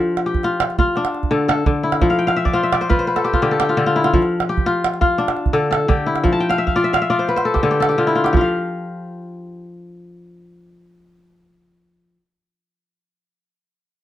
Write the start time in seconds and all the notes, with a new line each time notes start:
Already playing: F3 D4 F4 G4 A4
0.17 calabash click
0.26 G4
0.34 calabash thump
0.43 F4, calabash click
0.60 calabash click
0.70 calabash click
0.78 F4 F5, calabash thump
0.96 D4, calabash click
1.05 calabash click
1.14 calabash click
1.23 calabash thump
1.31 D3 A4, calabash click
1.48 A4, calabash click
1.66 D3, calabash thump
1.83 E4
1.92 calabash click
2.01 F3, calabash thump
2.10 F5, calabash click
2.19 G5
2.27 F5, calabash click
2.36 E5
2.45 D5, calabash thump
2.53 F4 C5, calabash click
2.63 E5
2.72 D5, calabash click
2.81 C5, calabash click
2.89 F4 B4, calabash thump
2.99 C5
3.07 B4, calabash click
3.16 A4, calabash click
3.24 G4, calabash click
3.33 F4, calabash thump
3.42 D3 G4, calabash click
3.51 A4
3.60 G4, calabash click
3.69 F4
3.77 D3 A4
3.86 F4
3.96 E4
4.04 F4, calabash click
4.14 F3, calabash thump
4.22 calabash click
4.40 calabash click
4.49 G4
4.58 calabash thump
4.66 F4, calabash click
4.84 calabash click
4.94 calabash click
5.01 F4 F5, calabash thump
5.18 D4, calabash click
5.28 calabash click
5.37 calabash click
5.46 calabash thump
5.53 D3 A4, calabash click
5.71 A4, calabash click
5.88 D3 G4, calabash thump
6.06 E4
6.16 calabash click
6.24 F3, calabash thump
6.33 A5
6.40 G5
6.49 F5, calabash click
6.58 E5
6.67 F5, calabash thump
6.76 F4 D5
6.84 E5
6.93 F5, calabash click
7.02 E5
7.10 F4 D5
7.19 C5
7.28 B4, calabash click
7.36 C5, calabash click
7.45 A4
7.54 G4, calabash thump, calabash click
7.63 D3 A4
7.71 G4
7.80 A4, calabash click
7.89 G4, calabash click
7.98 D3 F4
8.07 E4, calabash click
8.15 F4
8.24 G4, calabash click
8.33 F3 F4, calabash thump
8.41 F5